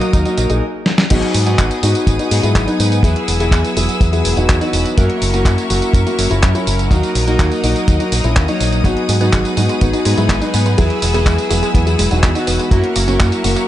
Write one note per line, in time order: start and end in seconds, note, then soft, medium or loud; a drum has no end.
0.00 0.62 F#3 loud
0.00 0.62 A#3 medium
0.00 0.10 A#3 loud
0.00 0.21 D#4 medium
0.00 0.62 D#4 medium
0.00 0.21 F#4 medium
0.00 0.59 A#4 medium
0.00 0.62 A#4 loud
0.00 0.60 D#5 medium
0.00 0.58 F#5 medium
0.00 0.60 D#6 medium
0.00 closed hi-hat soft
0.00 tambourine soft
0.13 0.24 D#2 medium
0.13 0.19 D#4 medium
0.13 kick loud
0.13 closed hi-hat medium
0.13 tambourine soft
0.25 0.47 D#4 medium
0.25 0.47 F#4 medium
0.25 closed hi-hat soft
0.25 tambourine soft
0.38 0.48 A#1 medium
0.38 0.43 D#5 medium
0.38 closed hi-hat medium
0.38 tambourine medium
0.50 0.60 A#1 medium
0.50 0.61 D#4 medium
0.50 0.62 D#4 medium
0.50 0.62 G#4 medium
0.50 closed hi-hat soft
0.50 tambourine soft
0.86 snare medium
0.98 snare loud
1.10 1.21 G#1 loud
1.10 1.44 F#3 medium
1.10 1.44 B3 medium
1.10 1.44 D#4 medium
1.10 1.42 D#4 medium
1.10 1.42 F#4 loud
1.10 1.44 G#4 medium
1.10 4.94 B4 medium
1.10 4.94 F#5 medium
1.10 4.94 G#5 medium
1.10 3.02 D#6 medium
1.10 kick loud
1.10 closed hi-hat medium
1.10 crash loud
1.10 tambourine soft
1.22 closed hi-hat soft
1.34 1.55 G#2 medium
1.34 open hi-hat loud
1.34 tambourine medium
1.47 2.28 F#3 medium
1.47 2.28 B3 medium
1.47 2.28 D#4 medium
1.47 1.79 D#4 medium
1.47 1.79 F#4 loud
1.47 2.28 G#4 medium
1.47 closed hi-hat soft
1.47 tambourine soft
1.59 1.69 G#1 loud
1.59 kick loud
1.59 clap loud
1.59 closed hi-hat loud
1.59 tambourine soft
1.71 closed hi-hat soft
1.71 tambourine soft
1.83 1.93 G#2 medium
1.83 2.15 D#4 medium
1.83 2.15 F#4 loud
1.83 open hi-hat loud
1.83 tambourine medium
1.95 closed hi-hat soft
1.95 tambourine soft
2.07 2.17 G#1 loud
2.07 kick loud
2.07 closed hi-hat medium
2.07 tambourine soft
2.19 2.41 D#4 medium
2.19 2.41 F#4 medium
2.19 closed hi-hat soft
2.19 tambourine soft
2.31 2.41 G#2 medium
2.31 3.01 F#3 medium
2.31 3.01 B3 medium
2.31 3.01 D#4 medium
2.31 3.01 G#4 loud
2.31 open hi-hat loud
2.31 tambourine medium
2.43 2.53 G#2 medium
2.43 2.65 G#3 medium
2.43 2.65 E4 medium
2.43 closed hi-hat soft
2.43 tambourine soft
2.55 2.65 G#1 medium
2.55 kick loud
2.55 clap loud
2.55 closed hi-hat loud
2.55 tambourine soft
2.68 3.00 B3 medium
2.68 3.00 D#4 medium
2.68 closed hi-hat soft
2.68 tambourine soft
2.80 3.00 G#2 medium
2.80 open hi-hat loud
2.80 tambourine medium
2.92 closed hi-hat soft
2.92 tambourine soft
3.03 3.13 E2 loud
3.03 3.37 F#3 medium
3.03 3.37 B3 medium
3.03 3.37 E4 medium
3.03 3.36 E4 medium
3.03 3.36 G#4 loud
3.03 3.37 G#4 loud
3.03 4.95 E6 medium
3.03 kick loud
3.03 closed hi-hat medium
3.03 tambourine soft
3.16 closed hi-hat soft
3.28 3.48 E1 medium
3.28 open hi-hat loud
3.28 tambourine medium
3.40 4.59 F#3 loud
3.40 4.59 B3 medium
3.40 4.59 E4 medium
3.40 3.72 E4 medium
3.40 4.59 G#4 loud
3.40 3.72 G#4 medium
3.40 closed hi-hat soft
3.40 tambourine soft
3.51 3.62 E2 loud
3.51 kick loud
3.51 clap loud
3.51 closed hi-hat medium
3.51 tambourine soft
3.65 closed hi-hat soft
3.65 tambourine soft
3.76 3.86 E1 medium
3.76 4.08 E4 medium
3.76 4.09 G#4 medium
3.76 open hi-hat loud
3.76 tambourine medium
3.89 closed hi-hat soft
3.89 tambourine soft
4.01 4.21 E2 medium
4.01 kick loud
4.01 closed hi-hat loud
4.01 tambourine soft
4.13 4.34 E4 medium
4.13 4.34 G#4 medium
4.13 closed hi-hat soft
4.13 tambourine soft
4.25 4.35 E1 medium
4.25 open hi-hat loud
4.25 tambourine medium
4.37 4.47 E1 loud
4.37 4.58 D#4 medium
4.37 4.58 F#4 medium
4.37 closed hi-hat soft
4.37 tambourine soft
4.49 4.59 E2 medium
4.49 kick loud
4.49 clap loud
4.49 closed hi-hat loud
4.49 tambourine soft
4.61 4.95 E3 medium
4.61 4.95 F#3 medium
4.61 4.95 B3 medium
4.61 4.93 D#4 medium
4.61 4.93 F#4 loud
4.61 4.95 B4 medium
4.61 closed hi-hat soft
4.61 tambourine soft
4.73 4.83 E1 medium
4.73 open hi-hat loud
4.73 tambourine medium
4.86 closed hi-hat soft
4.86 tambourine soft
4.97 5.08 F#2 loud
4.97 5.31 F#3 medium
4.97 5.29 A#3 medium
4.97 5.31 C#4 medium
4.97 5.31 E4 medium
4.97 5.29 F#4 loud
4.97 8.81 A#4 medium
4.97 5.31 A#4 medium
4.97 6.89 E5 medium
4.97 13.68 F#5 medium
4.97 6.89 C#6 medium
4.97 kick loud
4.97 closed hi-hat loud
4.97 tambourine soft
5.10 closed hi-hat soft
5.21 5.42 F#1 medium
5.21 open hi-hat loud
5.21 tambourine medium
5.34 6.16 F#3 medium
5.34 5.66 A#3 medium
5.34 6.16 C#4 medium
5.34 6.16 E4 medium
5.34 5.66 F#4 medium
5.34 6.16 A#4 medium
5.34 closed hi-hat soft
5.34 tambourine soft
5.45 5.56 F#2 loud
5.45 kick loud
5.45 clap loud
5.45 closed hi-hat medium
5.45 tambourine soft
5.58 closed hi-hat soft
5.58 tambourine soft
5.70 5.80 F#1 medium
5.70 6.02 A#3 medium
5.70 6.02 F#4 medium
5.70 open hi-hat loud
5.70 tambourine medium
5.82 closed hi-hat soft
5.82 tambourine soft
5.94 6.04 F#2 loud
5.94 kick loud
5.94 closed hi-hat loud
5.94 tambourine soft
6.07 6.28 A#3 medium
6.07 6.28 F#4 medium
6.07 closed hi-hat soft
6.07 tambourine soft
6.18 6.28 F#1 medium
6.18 6.88 F#3 medium
6.18 6.88 C#4 medium
6.18 6.88 E4 medium
6.18 6.88 A#4 loud
6.18 open hi-hat loud
6.18 tambourine medium
6.31 6.41 F#1 medium
6.31 6.52 C#4 medium
6.31 6.52 E4 medium
6.31 closed hi-hat soft
6.31 tambourine soft
6.43 6.53 F#2 medium
6.43 kick loud
6.43 clap loud
6.43 closed hi-hat loud
6.43 tambourine soft
6.55 6.87 C#4 medium
6.55 6.87 E4 medium
6.55 closed hi-hat soft
6.55 tambourine soft
6.67 6.87 F#1 medium
6.67 open hi-hat loud
6.67 tambourine medium
6.79 closed hi-hat soft
6.79 tambourine soft
6.91 7.01 D#2 loud
6.91 7.24 F#3 medium
6.91 7.24 A#3 medium
6.91 7.24 D#4 medium
6.91 7.23 D#4 medium
6.91 7.23 F#4 loud
6.91 7.24 A#4 loud
6.91 8.83 D#5 medium
6.91 10.74 D#6 medium
6.91 kick loud
6.91 closed hi-hat medium
6.91 tambourine soft
7.03 closed hi-hat soft
7.03 tambourine soft
7.15 7.35 A#1 medium
7.15 open hi-hat loud
7.15 tambourine medium
7.27 8.46 F#3 loud
7.27 8.46 A#3 medium
7.27 8.46 D#4 medium
7.27 7.59 D#4 medium
7.27 7.59 F#4 medium
7.27 8.46 A#4 loud
7.27 closed hi-hat soft
7.27 tambourine soft
7.39 7.49 D#2 loud
7.39 kick loud
7.39 clap loud
7.39 closed hi-hat medium
7.39 tambourine soft
7.52 closed hi-hat soft
7.52 tambourine soft
7.64 7.74 A#1 medium
7.64 7.96 D#4 medium
7.64 7.96 F#4 medium
7.64 open hi-hat loud
7.64 tambourine medium
7.76 closed hi-hat soft
7.76 tambourine soft
7.88 7.98 D#2 medium
7.88 kick loud
7.88 closed hi-hat medium
7.88 tambourine soft
8.00 8.21 D#4 medium
8.00 8.21 F#4 medium
8.00 closed hi-hat soft
8.00 tambourine soft
8.12 8.22 A#1 medium
8.12 open hi-hat loud
8.12 tambourine medium
8.24 8.34 A#1 medium
8.24 8.45 C#4 medium
8.24 8.45 E4 medium
8.24 closed hi-hat soft
8.24 tambourine soft
8.36 8.46 D#2 loud
8.36 kick loud
8.36 clap loud
8.36 closed hi-hat medium
8.36 tambourine soft
8.48 8.82 F#3 medium
8.48 8.80 F#3 medium
8.48 8.82 A#3 medium
8.48 8.82 D#4 medium
8.48 8.80 D#4 medium
8.48 8.82 C#5 medium
8.48 closed hi-hat soft
8.48 tambourine soft
8.60 8.80 A#1 medium
8.60 open hi-hat loud
8.60 tambourine medium
8.72 closed hi-hat soft
8.72 tambourine soft
8.84 8.94 G#1 loud
8.84 9.18 F#3 medium
8.84 8.90 F#3 loud
8.84 9.18 B3 medium
8.84 9.16 D#4 medium
8.84 9.18 D#4 medium
8.84 9.16 F#4 loud
8.84 9.18 G#4 medium
8.84 12.68 B4 medium
8.84 12.68 G#5 medium
8.84 kick loud
8.84 closed hi-hat medium
8.84 tambourine soft
8.97 closed hi-hat soft
9.09 9.29 G#2 medium
9.09 9.17 G#3 medium
9.09 open hi-hat loud
9.09 tambourine medium
9.21 10.03 F#3 medium
9.21 9.29 B3 loud
9.21 10.03 B3 medium
9.21 10.03 D#4 medium
9.21 9.53 D#4 medium
9.21 9.53 F#4 medium
9.21 10.03 G#4 medium
9.21 closed hi-hat soft
9.21 tambourine soft
9.33 9.43 G#1 loud
9.33 9.41 G#3 medium
9.33 kick loud
9.33 clap loud
9.33 closed hi-hat medium
9.33 tambourine soft
9.45 closed hi-hat soft
9.45 tambourine soft
9.57 9.67 G#2 medium
9.57 9.66 F#3 medium
9.57 9.89 D#4 medium
9.57 9.89 F#4 medium
9.57 open hi-hat loud
9.57 tambourine medium
9.69 9.78 G#3 loud
9.69 closed hi-hat soft
9.69 tambourine soft
9.81 9.92 G#1 loud
9.81 9.86 B3 medium
9.81 kick loud
9.81 closed hi-hat medium
9.81 tambourine soft
9.93 10.15 D#4 medium
9.93 10.15 F#4 medium
9.93 closed hi-hat soft
9.93 tambourine soft
10.05 10.16 G#2 medium
10.05 10.75 F#3 medium
10.05 10.17 G#3 loud
10.05 10.75 B3 medium
10.05 10.75 D#4 medium
10.05 10.75 G#4 loud
10.05 open hi-hat loud
10.05 tambourine medium
10.17 10.28 G#2 medium
10.17 10.26 F#3 loud
10.17 10.39 G#3 medium
10.17 10.39 E4 medium
10.17 closed hi-hat soft
10.17 tambourine soft
10.29 10.39 G#1 medium
10.29 10.38 G#3 medium
10.29 kick loud
10.29 clap loud
10.29 closed hi-hat medium
10.29 tambourine soft
10.41 10.74 B3 medium
10.41 10.74 D#4 medium
10.41 closed hi-hat soft
10.41 tambourine soft
10.54 10.74 G#2 medium
10.54 10.63 B3 loud
10.54 open hi-hat loud
10.54 tambourine medium
10.66 10.77 G#3 medium
10.66 closed hi-hat soft
10.66 tambourine soft
10.78 10.88 E2 loud
10.78 11.11 F#3 medium
10.78 10.83 F#3 loud
10.78 11.11 B3 medium
10.78 11.10 E4 medium
10.78 11.11 E4 medium
10.78 11.10 G#4 loud
10.78 11.11 G#4 loud
10.78 12.70 E6 medium
10.78 kick loud
10.78 closed hi-hat medium
10.78 tambourine soft
10.90 closed hi-hat soft
11.02 11.22 E1 medium
11.02 11.11 G#3 medium
11.02 open hi-hat loud
11.02 tambourine medium
11.14 12.33 F#3 loud
11.14 12.33 B3 medium
11.14 11.23 B3 loud
11.14 11.46 E4 medium
11.14 12.33 E4 medium
11.14 11.46 G#4 loud
11.14 12.33 G#4 loud
11.14 closed hi-hat soft
11.14 tambourine soft
11.26 11.36 E2 loud
11.26 11.35 G#3 medium
11.26 kick medium
11.26 clap loud
11.26 closed hi-hat medium
11.26 tambourine soft
11.38 closed hi-hat soft
11.38 tambourine soft
11.50 11.61 E1 medium
11.50 11.59 F#3 medium
11.50 11.82 E4 medium
11.50 11.83 G#4 medium
11.50 open hi-hat loud
11.50 tambourine medium
11.63 11.71 G#3 loud
11.63 closed hi-hat soft
11.63 tambourine soft
11.75 11.95 E2 medium
11.75 11.80 B3 medium
11.75 kick loud
11.75 closed hi-hat medium
11.75 tambourine soft
11.86 12.08 E4 medium
11.86 12.08 G#4 medium
11.86 closed hi-hat soft
11.86 tambourine soft
11.99 12.09 E1 medium
11.99 12.10 G#3 loud
11.99 open hi-hat loud
11.99 tambourine medium
12.11 12.21 E1 medium
12.11 12.20 F#3 loud
12.11 12.32 D#4 medium
12.11 12.32 F#4 medium
12.11 closed hi-hat soft
12.11 tambourine soft
12.23 12.33 E2 medium
12.23 12.32 G#3 medium
12.23 kick loud
12.23 clap loud
12.23 closed hi-hat medium
12.23 tambourine soft
12.35 12.69 E3 medium
12.35 12.69 F#3 medium
12.35 12.69 B3 medium
12.35 12.67 D#4 medium
12.35 12.67 F#4 loud
12.35 12.69 B4 medium
12.35 closed hi-hat soft
12.35 tambourine soft
12.47 12.58 E1 medium
12.47 12.56 B3 loud
12.47 open hi-hat loud
12.47 tambourine medium
12.59 12.71 G#3 medium
12.59 closed hi-hat soft
12.59 tambourine soft
12.71 12.81 F#2 loud
12.71 12.77 F#3 loud
12.71 13.05 F#3 medium
12.71 13.04 A#3 medium
12.71 13.05 C#4 medium
12.71 13.05 E4 medium
12.71 13.04 F#4 loud
12.71 13.68 A#4 medium
12.71 13.05 A#4 medium
12.71 13.68 E5 medium
12.71 13.68 C#6 medium
12.71 kick loud
12.71 closed hi-hat medium
12.71 tambourine soft
12.84 closed hi-hat soft
12.96 13.16 F#1 medium
12.96 13.04 A#3 medium
12.96 open hi-hat loud
12.96 tambourine medium
13.08 13.68 F#3 medium
13.08 13.40 A#3 medium
13.08 13.16 C#4 loud
13.08 13.68 C#4 medium
13.08 13.68 E4 medium
13.08 13.40 F#4 loud
13.08 13.68 A#4 medium
13.08 closed hi-hat soft
13.08 tambourine soft
13.20 13.30 F#2 loud
13.20 13.29 A#3 medium
13.20 kick loud
13.20 clap loud
13.20 closed hi-hat medium
13.20 tambourine soft
13.32 closed hi-hat soft
13.32 tambourine soft
13.44 13.54 F#1 medium
13.44 13.53 F#3 medium
13.44 13.68 A#3 medium
13.44 13.68 F#4 loud
13.44 open hi-hat loud
13.44 tambourine medium
13.56 13.65 A#3 loud
13.56 closed hi-hat soft
13.56 tambourine soft